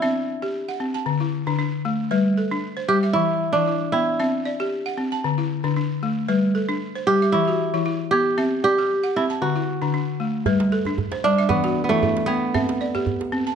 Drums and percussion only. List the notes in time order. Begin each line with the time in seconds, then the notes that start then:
10.46 djembe bass
10.60 djembe slap
10.85 djembe tone
10.98 djembe slap, djembe bass
11.12 djembe slap
11.24 djembe slap
11.50 djembe slap, djembe bass
11.64 djembe slap
11.77 djembe slap
11.90 djembe tone
12.03 djembe bass
12.17 djembe slap
12.29 djembe slap
12.55 djembe bass
12.69 djembe slap
12.95 djembe tone
13.07 djembe slap, djembe bass
13.21 djembe slap
13.32 djembe slap